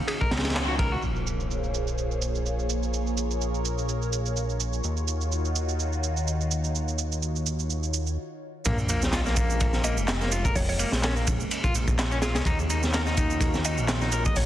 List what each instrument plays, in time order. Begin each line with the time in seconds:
Already playing: analog synth pad D#3 A#3 C#4 D#4 F#4
0.08 synth pluck G#4, ride
0.21 clean electric guitar A#4, kick
0.31 analog synth bass C#2, snare, ride
0.37 snare, ride
0.45 snare, ride
0.50 snare, ride
0.55 snare, clap, ride
0.68 clean electric guitar F#4
0.79 clean electric guitar A#4, kick, ride
0.92 clean electric guitar F#4
1.03 analog synth bass A#1, analog synth pad A#3 F4 G#4 C5 C#5, impact, shaker
1.16 shaker
1.27 shaker
1.40 shaker
1.51 shaker
1.64 shaker
1.74 shaker
1.87 shaker
1.98 shaker
2.11 shaker
2.22 shaker
2.35 shaker
2.46 shaker
2.59 shaker
2.70 shaker
2.83 shaker
2.93 analog synth pad A#4, shaker
3.07 shaker
3.17 shaker
3.31 shaker
3.41 shaker
3.54 shaker
3.65 shaker
3.78 shaker
3.89 shaker
4.02 shaker
4.13 shaker
4.26 shaker
4.36 shaker
4.49 shaker
4.60 shaker
4.73 shaker
4.84 analog synth bass D#2, analog synth pad D#3 D#4 F4 F#4, shaker
4.97 shaker
5.08 shaker
5.21 shaker
5.32 shaker
5.45 shaker
5.56 shaker
5.69 shaker
5.79 shaker
5.93 shaker
6.03 shaker
6.17 shaker
6.28 shaker
6.41 shaker
6.51 shaker
6.64 shaker
6.75 shaker
6.88 shaker
6.99 shaker
7.12 shaker
7.22 shaker
7.35 shaker
7.46 shaker
7.59 shaker
7.70 shaker
7.83 shaker
7.94 shaker
8.07 shaker
8.65 analog synth bass A#1, analog synth pad G#3 A#3 C#4, clean electric guitar A#3, kick, ride, sub drop, shaker
8.78 shaker
8.89 clean electric guitar A#3, ride, shaker
9.02 snare, shaker
9.13 clean electric guitar F4, snare, clap, ride, shaker
9.26 clean electric guitar A#3, snare, shaker
9.36 clean electric guitar A#3, kick, ride, shaker
9.50 shaker
9.60 kick, ride, shaker
9.73 snare, shaker
9.84 clean electric guitar A#3, synth pluck D#5, ride, shaker
9.97 analog synth bass F1, shaker
10.08 snare, clap, ride, shaker
10.21 clean electric guitar A#3, snare, shaker
10.32 clean electric guitar F4, ride, shaker
10.45 clean electric guitar A#4, kick, shaker
10.56 synth pluck C#5, kick, open hi-hat, shaker
10.69 synth pluck C#5, ride, shaker
10.79 clean electric guitar A#3, ride, shaker
10.92 analog synth bass A#1, snare, shaker
11.03 clean electric guitar C#4, synth pluck A#4, snare, clap, ride, shaker
11.16 clean electric guitar A#3, shaker
11.27 kick, ride, shaker
11.40 shaker
11.51 ride, shaker
11.64 clean electric guitar F4, kick, shaker
11.75 analog synth bass A#1, ride, shaker
11.88 kick, shaker
11.99 snare, clap, ride, shaker
12.11 clean electric guitar C#4, shaker
12.22 clean electric guitar F4, synth pluck G#4, snare, ride, shaker
12.35 analog synth bass C2, clean electric guitar C#4, synth pluck G#4, snare, ride, shaker
12.45 analog synth bass D#2, analog synth pad D#3 F4 F#4, clean electric guitar D#4, kick, ride, shaker
12.59 shaker
12.70 clean electric guitar D#4, ride, shaker
12.83 snare, shaker
12.94 clean electric guitar A#4, snare, clap, ride, shaker
13.06 clean electric guitar D#4, snare, shaker
13.17 clean electric guitar D#4, kick, ride, shaker
13.30 shaker
13.41 kick, ride, shaker
13.54 snare, shaker
13.65 clean electric guitar D#4, synth pluck D#5, ride, shaker
13.78 analog synth bass A#1, shaker
13.88 snare, clap, ride, shaker
14.01 clean electric guitar D#4, snare, shaker
14.12 clean electric guitar A#4, ride, shaker
14.25 clean electric guitar D#5, kick, shaker
14.36 synth pluck C#5, kick, open hi-hat, shaker